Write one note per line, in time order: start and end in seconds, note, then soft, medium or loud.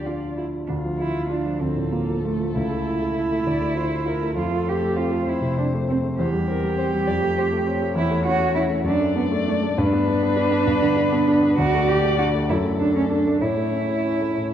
0.00 0.66 D2 soft
0.00 0.72 F3 soft
0.00 0.07 D4 soft
0.00 0.26 F4 soft
0.00 0.38 D5 medium
0.06 0.57 D4 soft
0.06 0.37 F4 soft
0.37 0.45 E4 soft
0.37 0.70 F4 soft
0.67 1.59 D2 soft
0.67 0.75 D4 medium
0.67 1.59 F4 medium
0.85 1.10 F3 soft
0.99 1.30 E4 medium
0.99 1.25 F4 soft
1.15 1.40 F3 soft
1.30 1.63 D4 medium
1.30 1.55 F4 soft
1.46 1.71 F3 soft
1.61 2.54 D2 soft
1.61 1.93 C4 medium
1.61 3.48 A4 medium
1.76 2.02 A2 soft
1.92 2.25 A#3 medium
1.92 2.19 F4 soft
2.09 2.35 F3 soft
2.25 2.56 A3 medium
2.25 2.51 F4 soft
2.40 2.56 F3 soft
2.55 3.44 C#2 medium
2.55 4.34 E4 medium
2.71 2.96 A3 soft
2.87 3.11 E4 soft
3.01 3.26 A3 soft
3.18 3.41 E4 soft
3.32 3.47 A3 soft
3.47 4.34 D2 soft
3.47 3.77 D5 medium
3.61 3.85 A3 soft
3.77 4.01 F4 soft
3.77 4.09 C5 medium
3.90 4.15 A3 soft
4.06 4.30 F4 soft
4.06 4.35 A#4 medium
4.22 4.37 A3 soft
4.36 5.25 F2 medium
4.36 4.70 F4 medium
4.36 5.24 A4 medium
4.51 4.76 A3 soft
4.67 4.91 C4 soft
4.67 4.98 G4 medium
4.81 5.05 A3 soft
4.96 5.20 C4 soft
4.96 5.30 F4 medium
5.11 5.36 A3 soft
5.26 6.16 F2 soft
5.26 5.57 E4 medium
5.26 6.16 C5 medium
5.42 5.66 C3 soft
5.58 5.82 C4 soft
5.58 5.66 D4 medium
5.74 5.98 A3 soft
5.88 6.13 C4 soft
5.88 5.98 C4 medium
6.03 6.18 A3 soft
6.19 7.05 E2 medium
6.19 7.93 G4 medium
6.19 6.27 C5 medium
6.33 6.57 G3 soft
6.48 6.72 C4 soft
6.48 6.77 A#4 medium
6.63 6.87 G3 soft
6.78 7.02 C4 soft
6.78 6.86 C5 medium
6.93 7.08 G3 soft
7.07 7.94 F2 medium
7.07 7.15 D5 medium
7.22 7.46 A3 soft
7.37 7.61 C4 soft
7.37 7.45 C5 medium
7.52 7.76 A3 soft
7.66 7.90 C4 soft
7.66 8.83 C#5 medium
7.82 7.96 A3 soft
7.96 8.83 E2 medium
7.96 8.26 E4 medium
8.10 8.34 A3 medium
8.26 8.50 C#4 soft
8.26 8.55 F#4 medium
8.40 8.64 A3 soft
8.55 8.79 C#4 medium
8.55 8.63 E4 medium
8.69 8.85 A3 soft
8.84 9.75 F#2 medium
8.84 9.16 D4 medium
8.84 9.80 D5 medium
9.00 9.25 A3 soft
9.16 9.24 B3 medium
9.16 9.41 D4 medium
9.32 9.57 A3 medium
9.48 9.56 A3 medium
9.48 9.73 D4 medium
9.63 9.79 A3 soft
9.78 10.66 G2 medium
9.78 11.55 D4 loud
9.78 11.60 B4 medium
9.93 10.17 B3 medium
10.08 10.32 D4 medium
10.23 10.47 B3 soft
10.37 10.61 D4 medium
10.51 10.76 B3 soft
10.67 11.55 G2 medium
10.82 11.07 D3 medium
10.96 11.21 D4 medium
11.12 11.37 B3 medium
11.28 11.52 D4 medium
11.42 11.58 B3 soft
11.58 12.46 D2 medium
11.58 11.92 F#4 loud
11.58 12.51 D5 medium
11.74 11.98 A3 medium
11.89 12.13 D4 medium
11.89 12.18 G4 medium
12.04 12.28 A3 soft
12.18 12.43 D4 medium
12.18 12.26 F#4 medium
12.34 12.49 A3 soft
12.49 13.40 F#2 medium
12.49 12.58 E4 medium
12.49 13.42 A4 medium
12.64 12.89 A3 soft
12.79 12.95 D4 medium
12.79 13.05 D4 soft
12.96 13.21 A3 soft
12.96 13.09 C#4 medium
13.09 13.43 D4 medium
13.09 13.36 D4 soft
13.27 13.42 A3 soft
13.41 14.36 A2 medium
13.41 14.54 E4 medium
13.41 14.54 C#5 medium
13.56 13.83 A3 soft
13.73 13.99 C#4 soft
13.89 14.15 A3 soft
14.04 14.30 C#4 soft
14.20 14.46 A3 soft
14.37 14.54 A2 soft